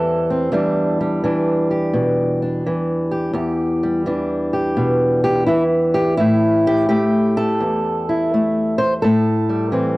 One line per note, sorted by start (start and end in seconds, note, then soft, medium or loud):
0.00 0.51 E2 medium
0.00 0.52 E3 medium
0.00 0.53 G3 soft
0.00 0.28 C4 soft
0.00 1.69 A4 loud
0.30 0.50 C4 soft
0.52 3.32 E2 medium
0.52 1.23 E3 soft
0.52 1.00 G3 soft
0.52 1.24 D4 soft
1.01 3.83 G3 soft
1.24 2.66 E3 medium
1.24 2.41 D4 soft
1.71 3.11 G4 soft
1.94 2.64 B2 medium
2.42 3.33 D4 soft
2.67 4.06 E3 medium
3.12 3.34 G4 soft
3.33 6.18 E2 medium
3.33 4.53 G4 medium
3.83 9.05 G3 soft
4.06 5.48 E3 medium
4.06 6.16 D4 soft
4.53 5.23 G4 soft
4.77 5.47 B2 medium
5.24 5.46 G4 medium
5.46 6.90 E3 medium
5.46 5.62 E4 medium
5.94 6.17 G4 medium
6.17 7.61 A2 medium
6.17 7.36 E4 medium
6.67 6.88 G4 medium
6.89 8.32 A3 medium
6.89 8.07 G4 medium
7.37 8.78 A4 loud
7.60 9.02 E2 medium
8.09 9.73 E4 soft
8.34 9.01 A3 medium
8.78 8.93 C5 loud
9.02 9.97 A2 medium
9.02 9.97 A4 medium
9.49 9.97 G3 soft
9.72 9.97 E3 medium
9.72 9.97 C4 soft